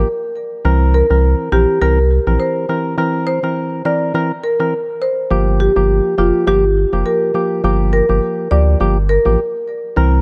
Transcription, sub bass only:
0.65 C2
1.10 C2
1.52 A#1
1.82 C2
2.27 A#1
5.31 G1
5.77 G1
6.18 F1
6.48 G1
6.93 F1
7.64 G1
8.10 G1
8.51 D2
8.81 G1
9.26 A1
9.97 C2

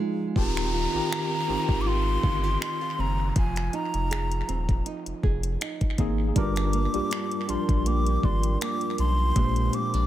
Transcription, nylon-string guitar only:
Already playing: F3 D#4
0.00 G#3
0.36 D#3
0.73 F4
1.11 G4
1.48 C4
1.86 F4
2.23 F4
2.44 G4
2.61 D#4
2.81 F4
2.98 C4
3.36 F3
3.73 D#4
4.11 G#4
4.48 C4
4.86 D#4
5.23 G#4
5.61 D#4
5.98 C4
6.36 G2
6.73 A#3
7.11 D4
7.49 F3
7.86 A#3
8.24 D4
8.61 A#3
8.98 F3
9.36 A#2
9.73 C4
9.94 D4

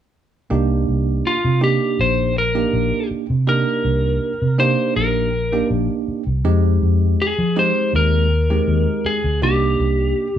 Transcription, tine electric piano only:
0.50 A#3 D4 D#4 G4
1.61 A#3 D4 D#4 G4
2.55 A#3 D4 D#4 G4
3.47 A#3 D4 D#4 G4
4.58 A#3 D4 D#4 G4
5.52 A#3 D4 D#4 G4
6.45 G#3 C4 D#4 G4
7.56 G#3 C4 D#4 G4
8.50 G#3 C4 D#4 G4
9.42 A#3 D4 D#4 G4

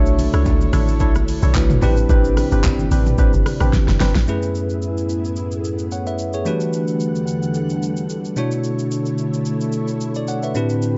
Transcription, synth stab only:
Already playing: D4 E4 A4 C#5
0.33 D4 E4 A4 C#5
0.73 D4 E4 A4 C#5
1.00 D4 E4 A4 C#5
1.43 D4 E4 A4 C#5
1.82 C4 D4 G4 B4
2.09 C4 D4 G4 B4
2.52 C4 D4 G4 B4
2.91 C4 D4 G4 B4
3.18 C4 D4 G4 B4
3.61 C4 D4 G4 B4
4.00 C4 D4 G4 B4

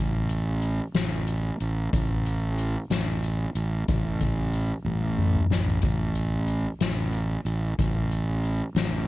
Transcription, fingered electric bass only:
Already playing: A1
0.94 A1
1.60 A1
1.93 A1
2.90 A1
3.55 A1
3.89 A1
4.85 A1
5.50 A1
5.83 A1
6.81 A1
7.45 A1
7.79 A1
8.75 A1

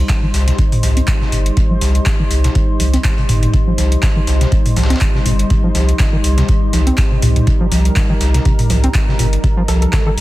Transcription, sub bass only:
0.34 C2
0.83 C2
1.32 G1
1.81 C2
2.31 C2
2.80 C2
3.29 G1
3.78 C2
4.27 C2
4.77 C2
5.26 G1
5.75 C2
6.24 C2
6.73 C2
7.22 C2
7.72 C2
8.21 C2
8.70 C2
9.19 G1
9.68 C2

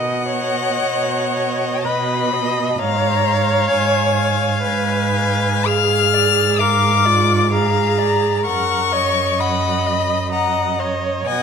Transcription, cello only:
Already playing: B2
0.81 B2
1.86 B2
2.79 G#2
3.71 G#2
4.64 G#2
5.67 G#2
8.46 F#2
11.27 B2

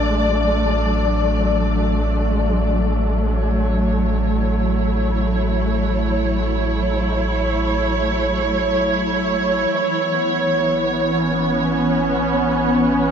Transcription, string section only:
Already playing: F#3 A3 D4 D5
3.31 C#5
4.27 E4
9.72 E3
10.00 B3
11.08 C#4

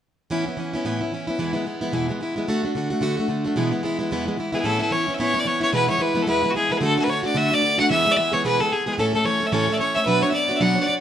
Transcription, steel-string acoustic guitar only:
0.30 A2 E3 B3 C#4 E4
0.46 B3 C#4 E4
0.57 E3 B3 C#4 E4
0.73 B3 C#4 E4
0.85 A2 E3 B3 C#4 E4
1.01 B3 C#4 E4
1.12 E3 B3 C#4 E4
1.27 B3 C#4 E4
1.38 E2 B2 E3 G#3 B3 E4
1.53 E3 G#3 B3 E4
1.65 E3 G#3 B3 E4
1.81 E3 G#3 B3 E4
1.92 E2 B2 E3 G#3 B3 E4
2.08 E3 G#3 B3 E4
2.20 E3 G#3 B3 E4
2.36 E3 G#3 B3 E4
2.48 D3 A3 D4 F#4
2.63 A3 D4 F#4
2.75 D3 A3 D4 F#4
2.90 A3 D4 F#4
3.01 D3 A3 D4 F#4
3.17 A3 D4 F#4
3.28 D3 A3 D4 F#4
3.44 A3 D4 F#4
3.56 E2 B2 E3 G#3 B3 E4
3.71 E3 G#3 B3 E4
3.83 E3 G#3 B3 E4
3.99 E3 G#3 B3 E4
4.11 E2 B2 E3 G#3 B3 E4
4.26 E3 G#3 B3 E4
4.37 E3 G#3 B3 E4
4.52 E3 G#3 B3 E4
4.64 A2 E3 B3 C#4 E4
4.79 B3 C#4 E4
4.91 E3 B3 C#4 E4
5.07 B3 C#4 E4
5.19 A2 E3 B3 C#4 E4
5.34 B3 C#4 E4
5.45 E3 B3 C#4 E4
5.61 B3 C#4 E4
5.72 E2 B2 E3 G#3 B3 E4
5.88 E3 G#3 B3 E4
5.99 E3 G#3 B3 E4
6.15 E3 G#3 B3 E4
6.26 E2 B2 E3 G#3 B3 E4
6.43 E3 G#3 B3 E4
6.54 E3 G#3 B3 E4
6.69 E3 G#3 B3 E4
6.81 D3 A3 D4 F#4
6.97 A3 D4 F#4
7.08 D3 A3 D4 F#4
7.23 A3 D4 F#4
7.35 D3 A3 D4 F#4
7.51 A3 D4 F#4
7.62 D3 A3 D4 F#4
7.78 A3 D4 F#4
7.90 E2 B2 E3 G#3 B3 G#4
8.05 E3 G#3 B3 G#4
8.17 E3 G#3 B3 G#4
8.32 E3 G#3 B3 G#4
8.44 E2 B2 E3 G#3 B3 G#4
8.59 E3 G#3 B3 G#4
8.70 E3 G#3 B3 G#4
8.86 E3 G#3 B3 G#4
8.98 A2 E3 A3 C#4 A4
9.13 A3 C#4 A4
9.25 E3 A3 C#4 A4
9.40 A3 C#4 A4
9.52 A2 E3 A3 C#4 A4
9.68 A3 C#4 A4
9.80 E3 A3 C#4 A4
9.95 A3 C#4 A4
10.06 B2 F#3 B3 D4 F#4 C#5
10.21 B3 D4 F#4 C#5
10.32 B3 D4 F#4 C#5
10.48 B3 D4 F#4 C#5
10.60 B2 F#3 B3 D4 F#4 C#5
10.75 B3 D4 F#4 C#5
10.87 B3 D4 F#4 C#5

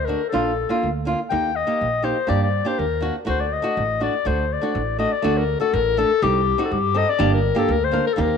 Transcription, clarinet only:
0.05 A#4
0.29 A4
1.30 G5
1.56 D#5
2.05 C5
2.29 D5
2.43 D5
2.68 C5
2.79 A#4
3.28 C5
3.41 D5
3.53 D#5
4.03 D5
4.27 C5
4.54 D5
4.99 D#5
5.12 D5
5.38 A#4
5.61 A4
5.74 A#4
5.98 A4
6.23 G4
6.65 A4
6.72 G4
6.98 D#5
7.09 D5
7.34 A#4
7.59 A4
7.72 A#4
7.84 C5
8.07 A#4
8.13 A4
8.21 A#4

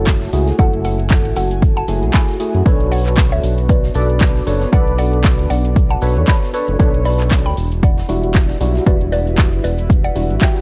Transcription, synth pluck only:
Already playing: A4 C#5
0.59 A4 F#5
0.85 A4 F#5
1.37 A4 F#5
1.77 F#5 A5
2.14 G#5 B5
2.92 D5 F#5
3.32 C#5 E5
3.69 B4 D5
4.73 D5 F#5
4.98 D5 F#5
5.50 D5 F#5
5.91 F#5 A5
6.28 D5 B5
7.05 D5 B5
7.46 G5 B5
7.83 D5 F#5
8.86 B4 D5
9.12 B4 D5
9.64 B4 D5
10.04 D5 F#5
10.42 E5 G5

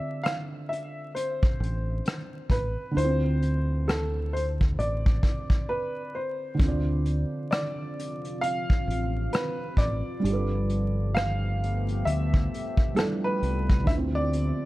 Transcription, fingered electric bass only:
1.60 A1
2.50 A1
2.97 D2
4.79 A1
6.60 D2
8.88 A1
9.77 A1
10.24 G1
12.06 D2
13.42 C2
13.87 D2

